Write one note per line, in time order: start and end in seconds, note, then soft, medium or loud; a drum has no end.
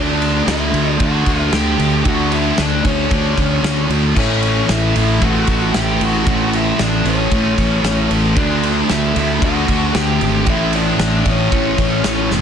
0.00 0.40 D2 loud
0.00 1.00 D3 loud
0.00 1.01 A3 loud
0.00 0.44 D4 medium
0.00 1.02 D4 loud
0.00 0.44 D5 loud
0.22 ride medium
0.46 0.70 D2 medium
0.46 0.96 E4 medium
0.46 0.90 E5 medium
0.46 snare loud
0.46 ride loud
0.74 0.96 D2 loud
0.74 ride medium
0.90 1.02 D5 medium
1.00 1.23 D2 medium
1.00 2.04 D3 medium
1.00 2.06 A3 medium
1.00 2.06 D4 medium
1.00 1.51 F#4 medium
1.00 1.50 F#5 medium
1.00 kick loud
1.00 ride loud
1.26 1.49 D2 loud
1.26 kick medium
1.26 ride medium
1.52 1.75 D2 medium
1.52 2.02 G4 medium
1.52 2.08 G5 loud
1.52 snare loud
1.52 ride loud
1.79 2.02 D2 medium
1.79 ride medium
2.05 2.51 D2 medium
2.05 3.09 D3 loud
2.05 3.12 A3 loud
2.05 3.11 D4 loud
2.05 2.32 F#4 medium
2.05 2.33 F#5 medium
2.05 kick loud
2.05 ride loud
2.32 2.57 E4 medium
2.32 2.60 E5 loud
2.32 ride medium
2.58 2.81 D2 medium
2.58 2.84 D4 medium
2.58 2.85 D5 medium
2.58 snare loud
2.58 ride medium
2.84 3.07 D2 loud
2.84 3.86 C#4 medium
2.84 3.87 C#5 medium
2.84 kick medium
2.84 ride medium
3.10 3.34 D2 loud
3.10 4.15 D3 medium
3.10 4.17 A3 medium
3.10 4.16 D4 medium
3.10 kick loud
3.10 ride loud
3.38 3.60 D2 medium
3.38 kick medium
3.38 ride medium
3.63 3.86 D2 medium
3.63 snare loud
3.63 ride loud
3.90 4.12 D2 medium
3.90 ride medium
4.15 4.61 A1 loud
4.15 5.21 A2 medium
4.15 5.23 E3 loud
4.15 5.24 A3 loud
4.15 4.66 C#4 medium
4.15 4.71 C#5 medium
4.15 kick loud
4.15 crash loud
4.43 ride medium
4.69 4.92 A1 loud
4.69 4.94 E4 medium
4.69 4.94 E5 medium
4.69 snare loud
4.69 ride loud
4.96 5.19 A1 loud
4.96 5.20 E4 medium
4.96 5.23 E5 loud
4.96 ride medium
5.21 5.44 A1 medium
5.21 6.25 A2 medium
5.21 6.26 E3 medium
5.21 6.28 A3 medium
5.21 5.72 F#4 medium
5.21 5.78 F#5 loud
5.21 kick loud
5.21 ride loud
5.47 5.70 A1 medium
5.47 kick medium
5.47 ride medium
5.74 5.97 A1 medium
5.74 6.00 G4 medium
5.74 6.03 G5 loud
5.74 snare loud
5.74 ride loud
6.01 6.23 A1 medium
6.01 6.51 F#4 medium
6.01 6.55 F#5 loud
6.01 ride medium
6.26 6.72 A1 loud
6.26 7.30 A2 loud
6.26 7.31 E3 loud
6.26 7.34 A3 loud
6.26 kick loud
6.26 ride loud
6.53 6.79 E4 medium
6.53 6.82 E5 loud
6.53 ride medium
6.79 7.02 A1 medium
6.79 7.04 D4 medium
6.79 7.04 D5 medium
6.79 snare loud
6.79 ride loud
7.05 7.28 A1 loud
7.05 8.08 C#4 medium
7.05 8.08 C#5 medium
7.05 ride medium
7.31 7.54 A1 medium
7.31 8.36 A2 medium
7.31 8.36 E3 medium
7.31 8.38 A3 loud
7.31 kick loud
7.31 ride loud
7.58 7.81 A1 medium
7.58 kick medium
7.58 ride medium
7.84 8.06 A1 medium
7.84 snare loud
7.84 ride loud
8.11 8.33 A1 loud
8.11 ride medium
8.36 8.81 D2 loud
8.36 9.39 D3 loud
8.36 9.42 A3 loud
8.36 8.87 D4 medium
8.36 9.42 D4 loud
8.36 8.86 D5 medium
8.36 kick loud
8.36 ride loud
8.63 ride medium
8.89 9.13 D2 medium
8.89 9.16 E4 medium
8.89 9.17 E5 medium
8.89 snare loud
8.89 ride loud
9.16 9.39 D2 loud
9.16 9.42 E4 medium
9.16 9.44 E5 loud
9.16 ride medium
9.41 9.64 D2 loud
9.41 10.45 D3 medium
9.41 10.46 A3 medium
9.41 10.46 D4 medium
9.41 kick loud
9.41 ride loud
9.45 9.93 F#4 medium
9.45 9.93 F#5 loud
9.68 9.91 D2 medium
9.68 kick medium
9.68 ride medium
9.95 10.18 D2 loud
9.95 10.45 G4 medium
9.95 10.49 G5 loud
9.95 snare loud
9.95 ride loud
10.21 10.44 G#1 medium
10.21 ride medium
10.46 10.92 A1 loud
10.46 11.50 A2 loud
10.46 11.51 E3 loud
10.46 11.52 A3 loud
10.46 10.76 E5 loud
10.46 kick loud
10.46 ride loud
10.51 10.73 E4 medium
10.73 11.24 D4 medium
10.73 11.29 D5 loud
10.73 ride medium
10.99 11.22 A1 medium
10.99 snare loud
10.99 ride loud
11.26 11.48 A1 medium
11.26 12.29 C#4 medium
11.26 kick medium
11.26 ride medium
11.30 12.30 C#5 medium
11.51 11.75 A1 medium
11.51 12.41 A2 medium
11.51 12.41 E3 medium
11.51 12.41 A3 loud
11.51 kick loud
11.51 ride loud
11.78 12.01 A1 loud
11.78 kick medium
11.78 ride medium
12.04 12.28 A1 medium
12.04 snare loud
12.04 ride loud
12.31 12.41 E1 medium
12.31 snare medium